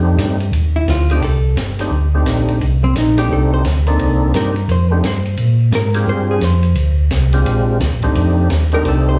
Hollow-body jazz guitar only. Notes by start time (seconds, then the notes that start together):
0.76 E4
0.90 F4
1.11 G4
1.24 A4
2.84 C4
2.98 D#4
3.19 G4
3.33 A4
3.54 C5
4.36 A#4
4.72 C5
4.92 A4
5.05 C5
5.75 A#4
6.09 C5
6.31 G#4
6.44 C5
8.74 A#4
8.88 A4
9.09 C5